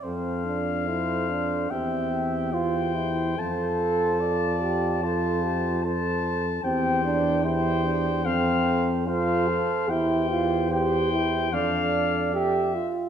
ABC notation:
X:1
M:4/4
L:1/8
Q:1/4=73
K:F
V:1 name="Trumpet"
f4 g2 g2 | a4 a2 a2 | [K:C] g2 g2 f2 f2 | g2 g2 f2 e z |]
V:2 name="Trumpet"
c z c2 e2 c2 | c2 d2 c2 c2 | [K:C] c2 c2 c2 c2 | c2 c2 d3 z |]
V:3 name="French horn"
A2 A2 G G3 | F2 F2 A G A2 | [K:C] G2 G2 A2 A2 | G2 G2 A3 z |]
V:4 name="Euphonium"
C D E D C2 F E | A3 G F3 z | [K:C] C D E D C2 F A | E F G E D2 G F |]
V:5 name="Tuba" clef=bass
F,,4 E,,4 | F,,8 | [K:C] E,,4 F,,4 | E,,4 F,,3 z |]